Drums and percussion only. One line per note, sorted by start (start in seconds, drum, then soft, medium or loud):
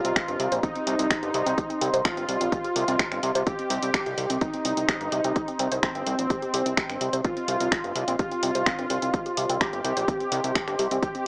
0.05 closed hi-hat medium
0.16 finger snap loud
0.16 kick loud
0.16 closed hi-hat medium
0.28 closed hi-hat soft
0.40 open hi-hat medium
0.52 closed hi-hat medium
0.63 kick loud
0.63 closed hi-hat medium
0.76 closed hi-hat soft
0.87 open hi-hat loud
0.99 closed hi-hat medium
1.11 finger snap loud
1.11 kick loud
1.11 closed hi-hat medium
1.23 closed hi-hat soft
1.34 open hi-hat medium
1.46 closed hi-hat medium
1.58 kick loud
1.58 closed hi-hat medium
1.70 closed hi-hat soft
1.81 open hi-hat loud
1.94 closed hi-hat medium
2.05 finger snap loud
2.05 kick loud
2.05 closed hi-hat medium
2.17 closed hi-hat soft
2.29 open hi-hat medium
2.41 closed hi-hat medium
2.52 kick loud
2.52 closed hi-hat medium
2.65 closed hi-hat soft
2.76 open hi-hat loud
2.88 closed hi-hat medium
2.99 finger snap loud
2.99 kick loud
2.99 closed hi-hat medium
3.12 finger snap soft
3.12 closed hi-hat soft
3.23 open hi-hat medium
3.35 closed hi-hat medium
3.47 kick loud
3.47 closed hi-hat medium
3.59 closed hi-hat soft
3.70 open hi-hat loud
3.83 closed hi-hat medium
3.94 finger snap loud
3.94 kick loud
3.94 closed hi-hat medium
4.06 closed hi-hat soft
4.18 open hi-hat medium
4.30 closed hi-hat medium
4.41 kick loud
4.41 closed hi-hat medium
4.53 closed hi-hat soft
4.65 open hi-hat loud
4.77 closed hi-hat medium
4.88 finger snap loud
4.88 kick loud
4.88 closed hi-hat medium
5.01 closed hi-hat soft
5.12 open hi-hat medium
5.24 closed hi-hat medium
5.36 kick loud
5.36 closed hi-hat medium
5.48 closed hi-hat soft
5.59 open hi-hat loud
5.72 closed hi-hat medium
5.83 finger snap loud
5.83 kick loud
5.83 closed hi-hat medium
5.95 closed hi-hat soft
6.07 open hi-hat medium
6.19 closed hi-hat medium
6.30 kick loud
6.30 closed hi-hat medium
6.42 closed hi-hat soft
6.54 open hi-hat loud
6.66 closed hi-hat medium
6.77 finger snap loud
6.77 kick loud
6.77 closed hi-hat medium
6.90 finger snap soft
6.90 closed hi-hat soft
7.01 open hi-hat loud
7.13 closed hi-hat medium
7.25 kick loud
7.25 closed hi-hat medium
7.37 closed hi-hat soft
7.48 open hi-hat loud
7.60 closed hi-hat medium
7.72 finger snap loud
7.72 kick loud
7.72 closed hi-hat medium
7.84 closed hi-hat soft
7.95 open hi-hat loud
8.08 closed hi-hat medium
8.19 kick loud
8.19 closed hi-hat medium
8.31 closed hi-hat soft
8.43 open hi-hat loud
8.55 closed hi-hat medium
8.66 finger snap loud
8.66 kick loud
8.66 closed hi-hat medium
8.79 closed hi-hat soft
8.90 open hi-hat loud
9.02 closed hi-hat medium
9.14 kick loud
9.14 closed hi-hat medium
9.26 closed hi-hat soft
9.37 open hi-hat loud
9.49 closed hi-hat medium
9.61 finger snap loud
9.61 kick loud
9.61 closed hi-hat medium
9.73 closed hi-hat soft
9.85 open hi-hat loud
9.97 closed hi-hat medium
10.08 kick loud
10.08 closed hi-hat medium
10.20 closed hi-hat soft
10.32 open hi-hat loud
10.44 closed hi-hat medium
10.55 finger snap loud
10.55 kick loud
10.55 closed hi-hat medium
10.68 finger snap soft
10.68 closed hi-hat soft
10.79 open hi-hat loud
10.91 closed hi-hat medium
11.03 kick loud
11.03 closed hi-hat medium
11.15 closed hi-hat soft